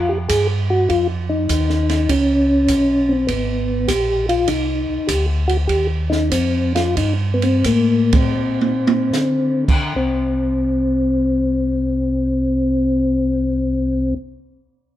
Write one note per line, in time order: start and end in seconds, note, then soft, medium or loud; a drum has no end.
0.00 0.28 F2 medium
0.00 0.12 F4 loud
0.09 0.18 G4 medium
0.28 0.88 G2 medium
0.28 0.47 G#4 medium
0.28 kick soft
0.28 hi-hat pedal medium
0.28 ride medium
0.70 0.90 F#4 loud
0.89 1.48 F2 medium
0.89 1.07 F4 loud
0.89 kick soft
0.89 ride soft
1.29 2.11 D#4 loud
1.49 2.07 D#2 medium
1.49 kick soft
1.49 hi-hat pedal medium
1.49 ride medium
1.69 snare soft
1.89 snare soft
1.89 ride soft
2.09 2.67 C#2 medium
2.09 3.13 C#4 medium
2.09 kick soft
2.09 ride medium
2.68 3.27 B1 medium
2.68 kick soft
2.68 hi-hat pedal medium
2.68 ride medium
3.09 3.27 C4 medium
3.27 3.87 G#1 medium
3.27 3.90 B3 medium
3.27 kick soft
3.27 ride medium
3.88 4.47 A#1 loud
3.88 4.26 G4 medium
3.88 kick soft
3.88 hi-hat pedal medium
3.88 ride medium
4.29 4.49 F4 medium
4.29 ride soft
4.48 4.86 C2 medium
4.48 5.10 D#4 medium
4.48 kick soft
4.48 ride medium
4.89 4.99 C2 soft
5.07 5.68 D2 medium
5.07 5.26 G4 medium
5.07 kick soft
5.07 hi-hat pedal medium
5.07 ride medium
5.48 5.57 F#4 medium
5.48 ride soft
5.68 6.30 D#2 medium
5.68 5.87 G4 loud
5.68 kick soft
5.68 ride medium
6.10 6.30 D#4 medium
6.10 snare soft
6.31 6.95 F2 medium
6.31 6.73 C4 medium
6.31 kick soft
6.31 hi-hat pedal medium
6.31 ride medium
6.75 6.96 F4 medium
6.75 snare medium
6.75 ride soft
6.97 7.63 G2 medium
6.97 7.13 D#4 medium
6.97 kick soft
6.97 ride medium
7.34 7.44 B3 medium
7.42 7.66 C4 medium
7.42 ride soft
7.64 8.35 A2 medium
7.64 8.15 A#3 medium
7.64 kick soft
7.64 hi-hat pedal soft
7.64 ride medium
8.13 9.64 C4 medium
8.13 kick medium
8.13 ride medium
8.36 9.11 A#2 medium
8.61 high tom medium
8.87 high tom medium
9.13 9.93 D3 medium
9.13 snare soft
9.13 hi-hat pedal medium
9.68 kick medium
9.68 crash medium
9.95 14.14 C2 medium
9.95 14.14 C4 medium